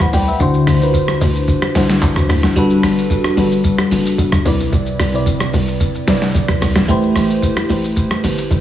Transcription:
Already playing: A1 A3 E4 G4 B4 C5
0.00 F#5 B5, cross-stick, mid tom, shaker
0.13 C2 D5 G5, open hi-hat, shaker
0.27 B4 E5, shaker
0.40 D2 D3 D4 E4 F#4 C5, kick, shaker
0.54 shaker
0.67 D2, cross-stick, open hi-hat, shaker
0.81 D3 D4 E4 F4 B4, shaker
0.89 F#4
0.94 kick, shaker
1.08 cross-stick, shaker
1.21 D2, open hi-hat, shaker
1.35 shaker
1.48 kick, shaker
1.62 cross-stick, shaker
1.75 C2 D3 D4 E4 F#4 C5, snare, open hi-hat, shaker
1.89 snare, shaker
2.02 C2, kick, clap, shaker
2.16 cross-stick, mid tom, shaker
2.29 D2, cross-stick, open hi-hat, shaker
2.43 B1, cross-stick, snare, shaker
2.56 G1 G3 D4 F#4 A4 B4, kick, shaker
2.70 shaker
2.83 G1, cross-stick, open hi-hat, shaker
2.98 shaker
3.10 kick, shaker
3.24 cross-stick, shaker
3.37 G1 G3 D4 F#4 A4 B4, open hi-hat, shaker
3.51 shaker
3.64 kick, shaker
3.78 cross-stick, shaker
3.91 F#1, open hi-hat, shaker
4.06 shaker
4.18 G1, kick, shaker
4.32 cross-stick, mid tom, shaker
4.45 C2 C3 C4 E4 B4 D5, open hi-hat, shaker
4.60 shaker
4.73 C2, kick, shaker
4.86 shaker
5.00 C2, cross-stick, open hi-hat, shaker
5.13 C3 C4 E4 B4 D5, shaker
5.26 kick, shaker
5.40 cross-stick, shaker
5.53 C2, open hi-hat, shaker
5.68 shaker
5.80 kick, shaker
5.95 shaker
6.07 B1 C3 C4 E4 B4 D5, snare, open hi-hat, shaker
6.22 snare, shaker
6.35 B1, kick, shaker
6.48 cross-stick, mid tom, shaker
6.62 C2, cross-stick, open hi-hat, shaker
6.76 A1, cross-stick, snare, shaker
6.88 A1 A3 E4 G4 B4 C5, kick, shaker
7.02 shaker
7.16 A1, cross-stick, open hi-hat, shaker
7.30 shaker
7.42 kick, shaker
7.57 cross-stick, shaker
7.69 A1 A3 E4 G4 B4 C5, open hi-hat, shaker
7.84 shaker
7.96 kick, shaker
8.11 cross-stick, shaker
8.24 G1, open hi-hat, shaker
8.38 shaker
8.51 A1, kick, shaker

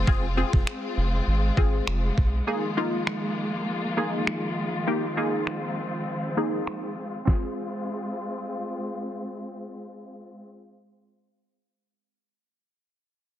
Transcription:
Already playing: G#3 C4 F4
0.07 F1 C4 F4 G#4, kick
0.37 C4 F4 G#4
0.53 F1, kick
0.67 finger snap
0.97 F1
1.27 G#1
1.57 G#1 C4 F4 G#4, kick
1.87 F1, finger snap
2.18 B1, kick
2.47 D#3 F3 A#3 D#4 F4 G#4
2.77 A#3 D#4 F4
3.07 finger snap
3.97 A#3 D#4 G#4
4.27 finger snap
4.87 A#3 C4 D#4 G4
5.17 A#3 D#4 G#4
5.47 finger snap
6.37 A#3 D#4 G#4
6.67 finger snap
7.25 G#3 C4 F4 G#4, kick, snare

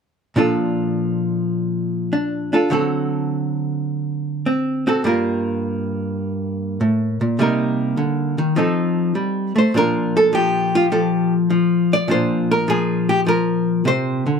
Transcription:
0.36 A#2 F3 D4 F4 A4
2.13 D4
2.53 D4 F4 A4
2.70 D3 F#3 C4 F#4 A4
4.46 C4
4.87 C4 F#4 A4
5.04 G2 G3 A#3 F4 A#4
6.81 A2
7.21 A#2
7.39 C3 G3 A#3 D#4 A#4
7.97 D3
8.38 D#3
8.56 F3 C4 D#4 A4
9.15 G3
9.56 A3 C5
9.74 A#2 F3 D4 F4 A#4
10.17 A4
10.33 F3 G4
10.75 F4
10.92 F3 A4
11.50 F3
11.93 D5
12.08 A#2 F3 D4 F4 C5
12.51 A#4
12.68 F3 G#4
13.09 G4
13.27 F3 A#4
13.85 C3 C5
14.26 D3

